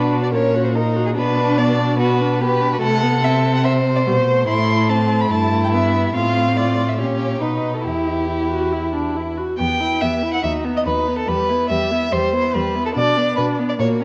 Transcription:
Already playing: cello B2, viola D4, violin D4 B4
0.12 viola F#4
0.23 violin D5
0.33 cello A#2, violin C#4 C#5, viola A#4
0.55 viola F#4
0.64 violin C5
0.75 violin D#4 A#4, viola A#4
0.96 viola F#4
1.06 violin G#4
1.16 cello B2, viola B3, violin D4 B4
1.38 viola D4
1.58 viola B3, violin D5
1.79 viola D4
1.99 viola B3, violin F#4 B4
2.21 viola D4
2.41 viola B3, violin G4 B4
2.61 viola D4
2.73 violin F#4
2.81 cello C3, viola A3, violin A4 F#5
3.03 viola B3
3.23 viola C4, violin E5
3.55 violin F#5
3.65 violin C5 E5
3.96 violin D5
4.06 cello B2, viola G3, violin C5
4.27 viola A3
4.48 cello A2, violin E4 C6
4.90 violin C4 A5
5.21 violin B5
5.31 cello G2, violin E4 A5
5.64 violin G5
5.74 viola B3, violin E5
6.15 cello A2, viola C4, violin F4 F5
6.57 violin F4 D5
6.89 violin E5
6.99 cello A#2, viola C#4, violin G4 C#5
7.41 cello B2, viola D#4, violin D#4 B4
7.74 violin A4
7.85 cello E2, viola E4, violin E4 G4
8.29 viola E4
8.51 viola F#4
8.72 viola E4
8.94 viola D4
9.16 viola E4
9.37 viola F#4
9.59 cello E2, viola B3, violin G4 G5
9.80 viola E4, violin B4
10.01 cello E2, viola B3, violin G4 E5
10.22 viola E4, violin B4
10.33 violin F#5
10.43 cello D#2, viola D#4, violin F#4 E5
10.65 viola B3, violin D#4
10.77 violin D#5
10.86 cello D#2, viola D#4, violin F#4 B4
11.06 viola B3, violin D#4
11.18 violin A4
11.28 cello E2, viola G3, violin G4 B4
11.49 viola B3, violin E4
11.70 cello E2, viola G3, violin G4 E5
11.91 viola B3, violin E4
12.12 cello E2, viola G3, violin G4 C5
12.33 viola B3, violin E4
12.54 cello E2, viola G3, violin G4 B4
12.75 viola B3, violin E4
12.86 violin A4
12.95 cello B2, viola D4, violin F#4 D5
13.17 viola B3, violin D4
13.37 cello B2, viola D4, violin F#4 B4
13.58 viola B3, violin D4
13.69 violin D5
13.79 cello A#2, viola A#3, violin F#4 C#5
14.00 viola C#4, violin A#4

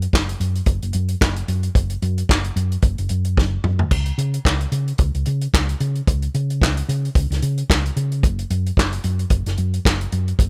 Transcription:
0.02 closed hi-hat
0.13 fingered electric bass F#1, kick, snare, clap
0.29 closed hi-hat
0.40 fingered electric bass F#2, closed hi-hat
0.55 closed hi-hat
0.66 fingered electric bass F#1, kick, closed hi-hat
0.82 fingered electric bass F#1, closed hi-hat
0.93 fingered electric bass F#2, closed hi-hat
1.08 closed hi-hat
1.21 fingered electric bass F#1, kick, snare, clap
1.36 closed hi-hat
1.48 fingered electric bass F#2, closed hi-hat
1.63 closed hi-hat
1.75 fingered electric bass F#1, kick, closed hi-hat
1.90 closed hi-hat
2.02 fingered electric bass F#2, closed hi-hat
2.18 closed hi-hat
2.29 fingered electric bass F#1, kick, snare, clap
2.44 closed hi-hat
2.56 fingered electric bass F#2, closed hi-hat
2.72 closed hi-hat
2.82 fingered electric bass F#1, kick, closed hi-hat
2.98 fingered electric bass F#1, closed hi-hat
3.09 fingered electric bass F#2, closed hi-hat
3.25 closed hi-hat
3.37 fingered electric bass F#1, kick, snare
3.64 fingered electric bass F#2, mid tom
3.79 floor tom
3.91 fingered electric bass C#2, kick, splash
4.06 closed hi-hat
4.18 fingered electric bass C#3, closed hi-hat
4.34 closed hi-hat
4.45 fingered electric bass C#2, kick, snare, clap
4.61 closed hi-hat
4.72 fingered electric bass C#3, closed hi-hat
4.88 closed hi-hat
4.98 fingered electric bass C#2, kick, closed hi-hat
5.15 fingered electric bass C#2, closed hi-hat
5.26 fingered electric bass C#3, closed hi-hat
5.41 closed hi-hat
5.54 fingered electric bass C#2, kick, snare, clap
5.69 closed hi-hat
5.80 fingered electric bass C#3, closed hi-hat
5.95 closed hi-hat
6.07 fingered electric bass C#2, kick, closed hi-hat
6.22 closed hi-hat
6.34 fingered electric bass C#3, closed hi-hat
6.50 closed hi-hat
6.61 fingered electric bass C#2, kick, snare, clap
6.77 closed hi-hat
6.89 fingered electric bass C#3, closed hi-hat
7.05 closed hi-hat
7.15 fingered electric bass C#2, kick, closed hi-hat
7.30 fingered electric bass C#2, snare, closed hi-hat
7.42 fingered electric bass C#3, closed hi-hat
7.58 closed hi-hat
7.70 fingered electric bass C#2, kick, snare, clap
7.86 closed hi-hat
7.96 fingered electric bass C#3, closed hi-hat
8.12 closed hi-hat
8.23 fingered electric bass F#1, kick, closed hi-hat
8.39 closed hi-hat
8.50 fingered electric bass F#2, closed hi-hat
8.66 closed hi-hat
8.77 fingered electric bass F#1, kick, snare, clap
8.92 closed hi-hat
9.04 fingered electric bass F#2, closed hi-hat
9.19 closed hi-hat
9.30 fingered electric bass F#1, kick, closed hi-hat
9.46 fingered electric bass F#1, snare, closed hi-hat
9.57 fingered electric bass F#2, closed hi-hat
9.74 closed hi-hat
9.85 fingered electric bass F#1, kick, snare, clap
10.01 closed hi-hat
10.12 fingered electric bass F#2, closed hi-hat
10.28 closed hi-hat
10.39 fingered electric bass F#1, kick, closed hi-hat

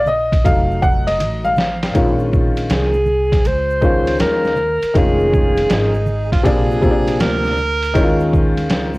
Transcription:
Already playing: upright bass A#1
0.06 upright piano D#5, low conga, shaker
0.32 kick, ride, shaker
0.44 upright bass F1, upright piano F#3 A3 D#4 F5, kick, ride, shaker
0.71 shaker
0.82 upright piano F#5, kick, shaker
1.07 upright piano D#5, ride, high conga, shaker
1.20 upright bass A1, hi-hat pedal, ride, low conga, shaker
1.45 upright piano F5, high conga, shaker
1.56 snare, low conga, shaker
1.83 snare, ride, shaker
1.94 upright bass A#1, upright piano D#3 G#3 C#4 F4, kick, ride, shaker
2.19 shaker
2.33 kick, shaker
2.56 ride, high conga, shaker
2.70 upright bass C2, alto saxophone G#4, snare, hi-hat pedal, ride, shaker
2.94 high conga, shaker
3.06 low conga, shaker
3.32 kick, snare, ride, shaker
3.44 upright bass C#2, alto saxophone C5, ride, shaker
3.70 shaker
3.81 upright piano D#3 G#3 C#4 F4, kick, shaker
4.06 ride, high conga, shaker
4.19 upright bass D#2, alto saxophone A#4, snare, hi-hat pedal, ride, shaker
4.44 snare, high conga, shaker
4.56 low conga, shaker
4.82 muted upright bass stroke, ride, shaker
4.94 upright bass F1, upright piano D#3 G#3 C#4 F4, alto saxophone G#4, kick, ride, shaker
5.20 shaker
5.33 kick, shaker
5.57 ride, high conga, shaker
5.70 upright bass G#1, tenor saxophone D#4, snare, hi-hat pedal, ride, shaker
5.94 high conga, shaker
6.06 low conga, shaker
6.32 tenor saxophone F4, kick, snare, ride, shaker
6.43 upright bass A#1, upright piano C3 F3 A#3 D4, tenor saxophone G#4, kick, ride, shaker
6.71 shaker
6.81 upright piano C3 F3 A#3 C4, kick, shaker
6.91 upright piano D4
7.07 ride, high conga, shaker
7.19 upright bass D2, tenor saxophone A#4, snare, hi-hat pedal, ride, shaker
7.45 snare, high conga, shaker
7.57 low conga, shaker
7.82 ride, shaker
7.94 upright bass D#2, upright piano D#3 G#3 C#4 E4, kick, ride, shaker
8.03 upright piano F4
8.20 shaker
8.33 kick, shaker
8.57 ride, high conga, shaker
8.70 upright bass C#2, snare, hi-hat pedal, ride, shaker
8.94 high conga, shaker

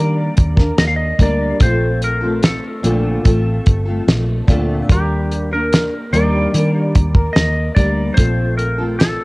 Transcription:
Already playing: fingered electric bass D#3, nylon-string guitar G3 A#3 D4 A#4, electric slide guitar D5
0.37 fingered electric bass D#2, kick, closed hi-hat
0.56 nylon-string guitar D4 A#4, kick, snare
0.61 nylon-string guitar A#3
0.78 fingered electric bass D#2, electric slide guitar D#5, snare, closed hi-hat
0.88 electric slide guitar F5
0.96 electric slide guitar D#5
1.19 fingered electric bass D2, nylon-string guitar G3 A#3 D4 A#4, electric slide guitar D5, kick, closed hi-hat
1.59 fingered electric bass A#1, nylon-string guitar A3 C4 F4, electric slide guitar C5, kick, closed hi-hat
1.63 nylon-string guitar A4
2.02 electric slide guitar A#4, closed hi-hat
2.21 nylon-string guitar A3 C4 F4 A4
2.43 electric slide guitar A4, snare, closed hi-hat
2.83 fingered electric bass A#1, nylon-string guitar A#2 D3 A3 C4 F4 A4, closed hi-hat
3.24 fingered electric bass A1, nylon-string guitar A3 C4 F4 A4, kick, closed hi-hat
3.66 fingered electric bass G1, kick, closed hi-hat
3.86 nylon-string guitar A3 C4 F4 A4
4.07 fingered electric bass A#1, snare, closed hi-hat
4.47 fingered electric bass D2, nylon-string guitar A#2 D3 A3 C4 F4 A4, kick, closed hi-hat
4.89 fingered electric bass D#2, nylon-string guitar G3 A#3 D4, electric slide guitar G4, kick, closed hi-hat
4.93 nylon-string guitar A#4
5.32 closed hi-hat
5.52 nylon-string guitar A#3 D4 A#4, electric slide guitar A#4
5.73 snare, closed hi-hat
6.12 fingered electric bass D#2, nylon-string guitar D#3 G3 A#3 D4 A#4, electric slide guitar D5, closed hi-hat
6.54 fingered electric bass D#3, nylon-string guitar G3 A#3 D4, closed hi-hat
6.58 nylon-string guitar A#4
6.95 fingered electric bass D#2, kick, closed hi-hat
7.15 nylon-string guitar A#3 A#4, kick
7.33 fingered electric bass D#2, electric slide guitar D#5, snare, closed hi-hat
7.75 fingered electric bass D2, nylon-string guitar G3 A#3 D4 A#4, electric slide guitar D5, kick, closed hi-hat
8.14 fingered electric bass A#1, nylon-string guitar A3 C4, electric slide guitar C5, kick, closed hi-hat
8.18 nylon-string guitar F4 A4
8.58 electric slide guitar A#4, closed hi-hat
8.78 nylon-string guitar A3 C4 F4 A4
8.99 electric slide guitar A4, snare, closed hi-hat

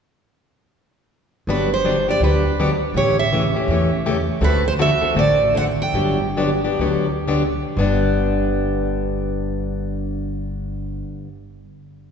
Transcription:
1.47 upright bass G1, steel-string acoustic guitar D3 F#3 B3 D4 G4 B4
1.74 steel-string acoustic guitar C5
1.85 steel-string acoustic guitar D3 F#3 B3 D4 G4
2.08 steel-string acoustic guitar B3 D4 G4 D5
2.20 upright bass D2, steel-string acoustic guitar D3 F#3 B3 D4 G4 B4
2.59 steel-string acoustic guitar D3 F#3 B3 D4 G4
2.94 upright bass A1, steel-string acoustic guitar C#3 E3 A3 C#4 G4 C#5
3.19 steel-string acoustic guitar E5
3.32 steel-string acoustic guitar C#3 E3 A3 C#4 G4
3.56 steel-string acoustic guitar A3 C#4 G4
3.68 upright bass E2, steel-string acoustic guitar C#3 E3 A3 C#4 G4
4.06 steel-string acoustic guitar C#3 E3 A3 C#4 G4
4.41 upright bass D2, steel-string acoustic guitar D3 A3 C4 F#4 A4 B4
4.68 steel-string acoustic guitar C5
4.79 steel-string acoustic guitar D3 A3 C4 F#4 A4 E5
5.01 steel-string acoustic guitar C4 F#4 A4
5.15 upright bass A1, steel-string acoustic guitar D3 A3 C4 F#4 A4
5.19 steel-string acoustic guitar D5
5.54 steel-string acoustic guitar D3 A3 C4 F#4 A4 F#5
5.82 steel-string acoustic guitar G5
5.93 upright bass G1, steel-string acoustic guitar D3 F#3 B3 D4 G4
6.37 steel-string acoustic guitar D3 F#3 B3 D4 G4
6.64 steel-string acoustic guitar B3 D4 G4
6.79 upright bass D2, steel-string acoustic guitar D3 F#3 B3 D4 G4
7.28 steel-string acoustic guitar D3 F#3 B3 D4 G4
7.77 upright bass G1, steel-string acoustic guitar G2 D3 B3 D4 G4

